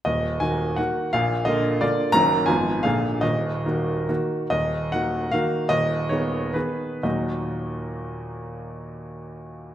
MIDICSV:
0, 0, Header, 1, 2, 480
1, 0, Start_track
1, 0, Key_signature, -6, "minor"
1, 0, Tempo, 354820
1, 81, Time_signature, 3, 2, 24, 8
1, 2002, Tempo, 335008
1, 3442, Tempo, 376884
1, 4402, Tempo, 420757
1, 6322, Tempo, 390625
1, 7762, Tempo, 471328
1, 9682, Tempo, 457317
1, 11537, End_track
2, 0, Start_track
2, 0, Title_t, "Grand piano"
2, 0, Program_c, 0, 0
2, 66, Note_on_c, 0, 75, 71
2, 77, Note_on_c, 0, 39, 53
2, 86, Note_on_c, 0, 27, 42
2, 318, Control_c, 0, 64, 127
2, 542, Note_on_c, 0, 80, 68
2, 550, Note_off_c, 0, 39, 0
2, 555, Note_off_c, 0, 27, 0
2, 555, Note_on_c, 0, 51, 39
2, 559, Note_on_c, 0, 66, 39
2, 560, Note_off_c, 0, 75, 0
2, 573, Note_on_c, 0, 58, 34
2, 1005, Note_off_c, 0, 51, 0
2, 1007, Note_off_c, 0, 66, 0
2, 1014, Note_off_c, 0, 58, 0
2, 1034, Note_on_c, 0, 78, 61
2, 1048, Note_off_c, 0, 80, 0
2, 1049, Note_on_c, 0, 58, 32
2, 1057, Note_on_c, 0, 51, 38
2, 1058, Note_on_c, 0, 66, 41
2, 1075, Control_c, 0, 64, 0
2, 1478, Note_off_c, 0, 58, 0
2, 1483, Note_off_c, 0, 51, 0
2, 1484, Note_off_c, 0, 66, 0
2, 1519, Note_off_c, 0, 78, 0
2, 1526, Note_on_c, 0, 77, 90
2, 1535, Note_on_c, 0, 34, 55
2, 1543, Note_on_c, 0, 46, 57
2, 1776, Control_c, 0, 64, 127
2, 1961, Note_on_c, 0, 75, 76
2, 1974, Note_on_c, 0, 50, 47
2, 1990, Note_off_c, 0, 34, 0
2, 1994, Note_off_c, 0, 46, 0
2, 1999, Note_off_c, 0, 77, 0
2, 1999, Note_on_c, 0, 58, 49
2, 2000, Note_on_c, 0, 65, 53
2, 2429, Note_off_c, 0, 50, 0
2, 2444, Note_off_c, 0, 58, 0
2, 2445, Note_off_c, 0, 65, 0
2, 2473, Note_on_c, 0, 74, 77
2, 2474, Note_off_c, 0, 75, 0
2, 2484, Note_on_c, 0, 50, 44
2, 2488, Note_on_c, 0, 58, 48
2, 2494, Note_on_c, 0, 65, 45
2, 2514, Control_c, 0, 64, 0
2, 2911, Note_off_c, 0, 50, 0
2, 2913, Note_off_c, 0, 58, 0
2, 2917, Note_off_c, 0, 65, 0
2, 2924, Note_on_c, 0, 82, 115
2, 2937, Note_on_c, 0, 30, 63
2, 2947, Note_on_c, 0, 51, 53
2, 2951, Note_on_c, 0, 42, 65
2, 2953, Note_off_c, 0, 74, 0
2, 2954, Note_on_c, 0, 58, 55
2, 2959, Note_on_c, 0, 66, 49
2, 3192, Control_c, 0, 64, 127
2, 3386, Note_off_c, 0, 51, 0
2, 3389, Note_off_c, 0, 58, 0
2, 3392, Note_off_c, 0, 66, 0
2, 3403, Note_on_c, 0, 80, 81
2, 3415, Note_off_c, 0, 30, 0
2, 3421, Note_off_c, 0, 42, 0
2, 3423, Note_off_c, 0, 82, 0
2, 3423, Note_on_c, 0, 53, 42
2, 3427, Note_on_c, 0, 32, 53
2, 3428, Note_on_c, 0, 44, 61
2, 3431, Note_on_c, 0, 59, 45
2, 3434, Note_on_c, 0, 65, 42
2, 3462, Control_c, 0, 64, 0
2, 3671, Control_c, 0, 64, 127
2, 3853, Note_off_c, 0, 53, 0
2, 3857, Note_off_c, 0, 59, 0
2, 3858, Note_off_c, 0, 65, 0
2, 3880, Note_on_c, 0, 77, 78
2, 3888, Note_off_c, 0, 32, 0
2, 3889, Note_off_c, 0, 44, 0
2, 3892, Note_off_c, 0, 80, 0
2, 3893, Note_on_c, 0, 46, 52
2, 3896, Note_on_c, 0, 50, 39
2, 3902, Note_on_c, 0, 58, 40
2, 3905, Note_on_c, 0, 34, 49
2, 3910, Note_on_c, 0, 68, 43
2, 3929, Control_c, 0, 64, 0
2, 4144, Control_c, 0, 64, 127
2, 4346, Note_off_c, 0, 50, 0
2, 4349, Note_off_c, 0, 58, 0
2, 4353, Note_off_c, 0, 68, 0
2, 4367, Note_on_c, 0, 75, 70
2, 4379, Note_off_c, 0, 46, 0
2, 4383, Note_on_c, 0, 27, 46
2, 4384, Note_on_c, 0, 39, 55
2, 4386, Note_off_c, 0, 34, 0
2, 4388, Note_off_c, 0, 77, 0
2, 4412, Control_c, 0, 64, 0
2, 4674, Control_c, 0, 64, 127
2, 4859, Note_off_c, 0, 27, 0
2, 4860, Note_off_c, 0, 39, 0
2, 4884, Note_on_c, 0, 51, 41
2, 4884, Note_on_c, 0, 58, 41
2, 4894, Note_on_c, 0, 66, 41
2, 5328, Note_off_c, 0, 51, 0
2, 5328, Note_off_c, 0, 58, 0
2, 5333, Note_off_c, 0, 66, 0
2, 5357, Note_off_c, 0, 75, 0
2, 5371, Note_on_c, 0, 51, 39
2, 5371, Note_on_c, 0, 58, 34
2, 5376, Note_on_c, 0, 66, 43
2, 5393, Control_c, 0, 64, 0
2, 5798, Note_off_c, 0, 51, 0
2, 5799, Note_off_c, 0, 58, 0
2, 5801, Note_off_c, 0, 66, 0
2, 5842, Note_on_c, 0, 75, 77
2, 5846, Note_on_c, 0, 27, 45
2, 5850, Note_on_c, 0, 39, 47
2, 6079, Control_c, 0, 64, 127
2, 6309, Note_off_c, 0, 27, 0
2, 6311, Note_off_c, 0, 39, 0
2, 6321, Note_off_c, 0, 75, 0
2, 6322, Note_on_c, 0, 78, 71
2, 6344, Note_on_c, 0, 51, 36
2, 6349, Note_on_c, 0, 58, 34
2, 6354, Note_on_c, 0, 66, 38
2, 6783, Note_off_c, 0, 51, 0
2, 6785, Note_off_c, 0, 58, 0
2, 6788, Note_off_c, 0, 66, 0
2, 6806, Note_on_c, 0, 77, 77
2, 6820, Note_off_c, 0, 78, 0
2, 6828, Note_on_c, 0, 51, 47
2, 6833, Control_c, 0, 64, 0
2, 6840, Note_on_c, 0, 58, 40
2, 6840, Note_on_c, 0, 66, 49
2, 7238, Note_off_c, 0, 51, 0
2, 7245, Note_off_c, 0, 58, 0
2, 7245, Note_off_c, 0, 66, 0
2, 7266, Note_on_c, 0, 75, 87
2, 7272, Note_off_c, 0, 77, 0
2, 7277, Note_on_c, 0, 27, 53
2, 7278, Note_on_c, 0, 39, 54
2, 7516, Control_c, 0, 64, 127
2, 7747, Note_off_c, 0, 27, 0
2, 7747, Note_off_c, 0, 39, 0
2, 7755, Note_off_c, 0, 75, 0
2, 7762, Note_on_c, 0, 73, 62
2, 7777, Note_on_c, 0, 51, 38
2, 7783, Note_on_c, 0, 59, 39
2, 7790, Note_on_c, 0, 68, 39
2, 8194, Note_off_c, 0, 51, 0
2, 8197, Note_off_c, 0, 59, 0
2, 8200, Note_off_c, 0, 68, 0
2, 8213, Note_on_c, 0, 71, 52
2, 8224, Note_on_c, 0, 51, 38
2, 8227, Note_off_c, 0, 73, 0
2, 8235, Note_on_c, 0, 68, 38
2, 8238, Note_on_c, 0, 59, 37
2, 8241, Control_c, 0, 64, 0
2, 8693, Note_off_c, 0, 51, 0
2, 8698, Note_off_c, 0, 68, 0
2, 8700, Note_off_c, 0, 59, 0
2, 8715, Note_on_c, 0, 39, 40
2, 8719, Note_on_c, 0, 75, 47
2, 8720, Note_on_c, 0, 54, 31
2, 8725, Note_on_c, 0, 46, 36
2, 8726, Note_on_c, 0, 66, 36
2, 8728, Note_off_c, 0, 71, 0
2, 8728, Note_on_c, 0, 58, 38
2, 8728, Note_on_c, 0, 63, 35
2, 8957, Control_c, 0, 64, 127
2, 11537, Note_off_c, 0, 39, 0
2, 11537, Note_off_c, 0, 46, 0
2, 11537, Note_off_c, 0, 54, 0
2, 11537, Note_off_c, 0, 58, 0
2, 11537, Note_off_c, 0, 63, 0
2, 11537, Note_off_c, 0, 66, 0
2, 11537, Note_off_c, 0, 75, 0
2, 11537, End_track
0, 0, End_of_file